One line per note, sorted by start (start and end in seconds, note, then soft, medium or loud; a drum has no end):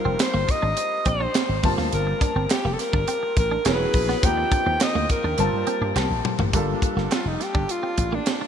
0.00 1.59 G3 medium
0.00 1.59 C4 medium
0.00 1.60 D#4 medium
0.00 1.60 F4 medium
0.00 0.23 A#4 medium
0.00 1.60 A#4 medium
0.05 0.15 F1 loud
0.05 0.15 C4 medium
0.19 0.52 C5 medium
0.19 snare loud
0.19 clap medium
0.19 closed hi-hat loud
0.34 0.44 G1 medium
0.34 0.43 A#3 medium
0.48 1.10 D#5 loud
0.48 muted clean electric guitar stroke soft
0.48 kick medium
0.48 closed hi-hat medium
0.62 0.73 G#1 medium
0.62 0.72 D4 medium
0.77 muted clean electric guitar stroke soft
0.77 closed hi-hat loud
1.05 1.26 A#1 medium
1.05 1.15 C4 medium
1.05 1.67 C5 medium
1.05 kick medium
1.05 closed hi-hat medium
1.20 1.30 D4 medium
1.34 1.44 C4 medium
1.34 snare loud
1.34 clap medium
1.34 closed hi-hat loud
1.49 1.59 G#1 medium
1.62 1.73 G1 loud
1.62 3.61 G3 medium
1.62 3.61 A#3 medium
1.62 3.61 C4 medium
1.62 3.62 F4 medium
1.62 3.62 A5 medium
1.62 muted clean electric guitar stroke soft
1.62 kick loud
1.62 open hi-hat medium
1.78 1.88 D2 medium
1.78 1.87 A#3 medium
1.78 snare soft
1.93 2.12 G1 loud
1.93 2.20 A#4 medium
1.93 closed hi-hat medium
2.07 muted clean electric guitar stroke soft
2.21 2.31 D4 medium
2.21 2.52 A#4 medium
2.21 kick loud
2.21 closed hi-hat medium
2.36 2.45 G1 loud
2.36 2.45 C4 medium
2.50 2.74 G4 medium
2.50 snare loud
2.50 clap medium
2.50 closed hi-hat medium
2.65 2.74 F1 medium
2.65 2.74 A#3 medium
2.73 2.81 A4 medium
2.79 3.37 A#4 loud
2.79 muted clean electric guitar stroke soft
2.79 snare soft
2.79 closed hi-hat medium
2.93 3.03 G1 medium
2.93 3.03 D4 medium
2.93 kick medium
3.08 3.17 C4 medium
3.08 closed hi-hat medium
3.23 muted clean electric guitar stroke soft
3.36 3.56 A1 loud
3.36 3.64 A#4 loud
3.36 kick medium
3.36 closed hi-hat medium
3.51 3.61 D4 medium
3.65 3.85 E1 loud
3.65 4.23 F#3 medium
3.65 4.23 B3 medium
3.65 3.75 C#4 medium
3.65 4.23 C#4 medium
3.65 4.23 E4 medium
3.65 4.24 G#4 medium
3.65 4.26 B4 loud
3.65 snare loud
3.65 clap medium
3.65 closed hi-hat medium
3.94 4.14 A#1 medium
3.94 muted clean electric guitar stroke soft
3.94 kick medium
3.94 open hi-hat medium
4.09 4.18 B3 medium
4.09 snare soft
4.23 4.43 D#2 loud
4.23 5.36 F3 medium
4.23 5.36 A#3 medium
4.23 5.36 C4 medium
4.23 5.37 D#4 medium
4.23 5.37 G4 medium
4.23 4.84 G5 loud
4.23 kick loud
4.23 closed hi-hat medium
4.37 muted clean electric guitar stroke soft
4.52 4.61 D4 medium
4.52 kick loud
4.52 closed hi-hat medium
4.66 4.76 D#2 medium
4.66 4.76 C4 medium
4.80 5.10 D#5 loud
4.80 snare loud
4.80 clap medium
4.80 closed hi-hat medium
4.95 5.05 D2 loud
4.95 5.05 A#3 medium
5.09 5.93 A#4 medium
5.09 muted clean electric guitar stroke soft
5.09 kick medium
5.09 closed hi-hat medium
5.24 5.34 D#2 medium
5.24 5.34 D4 medium
5.37 5.48 G1 loud
5.37 6.51 G3 medium
5.37 6.51 A#3 medium
5.37 6.52 C4 medium
5.37 6.52 F4 medium
5.37 6.52 A5 medium
5.37 muted clean electric guitar stroke soft
5.37 closed hi-hat medium
5.53 5.63 G2 medium
5.67 5.76 C4 medium
5.67 closed hi-hat medium
5.81 5.91 G2 loud
5.81 5.91 D4 medium
5.96 6.06 C2 medium
5.96 6.06 C4 medium
5.96 snare medium
5.96 clap medium
6.10 6.20 A#1 medium
6.25 muted clean electric guitar stroke soft
6.25 mid tom medium
6.39 6.49 A1 medium
6.39 6.49 A#3 medium
6.39 floor tom loud
6.53 6.73 G1 medium
6.53 8.47 G3 medium
6.53 6.63 G3 medium
6.53 8.47 A#3 medium
6.53 8.47 D4 medium
6.53 8.47 F4 medium
6.53 8.47 A4 medium
6.53 kick loud
6.53 closed hi-hat medium
6.82 muted clean electric guitar stroke soft
6.82 kick medium
6.82 closed hi-hat medium
6.96 7.06 G1 medium
6.96 7.06 A#3 medium
6.96 snare soft
7.12 7.21 C4 medium
7.12 7.29 F4 medium
7.12 snare loud
7.12 clap medium
7.12 closed hi-hat medium
7.25 7.35 F1 medium
7.25 7.44 D#4 medium
7.40 7.73 G4 medium
7.40 muted clean electric guitar stroke soft
7.40 snare soft
7.40 closed hi-hat medium
7.54 7.64 G1 medium
7.54 7.64 D4 medium
7.54 kick medium
7.69 8.16 F4 medium
7.69 closed hi-hat medium
7.83 7.93 C4 medium
7.98 8.18 A1 medium
7.98 muted clean electric guitar stroke soft
7.98 kick medium
7.98 closed hi-hat medium
8.12 8.22 A#3 medium
8.12 8.47 D4 medium
8.26 muted clean electric guitar stroke soft
8.26 snare loud
8.26 clap medium
8.26 closed hi-hat medium
8.41 8.47 D4 medium